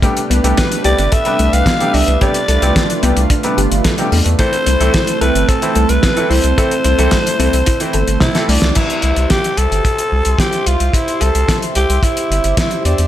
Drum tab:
CC |----------------|----------------|----------------|----------------|
HH |xxxxxxxxxxxxxxox|xxxxxxxxxxxxxxox|xxxxxxxxxxxxxxox|xxxxxxxxxxxxxxox|
SD |----o-------o---|----o-------o---|----o-------o---|----o-------oo-o|
T1 |----------------|----------------|----------------|------------o---|
BD |o---o---o---o---|o---o---o---o---|o---o---o---o---|o---o---o---o---|

CC |x---------------|----------------|
HH |xxxxxxxxxx-xxxxx|xxxxxxxxxxxxxxxx|
SD |----o-------o---|----o-------o---|
T1 |----------------|----------------|
BD |o---o---o---o---|o---o---o---o---|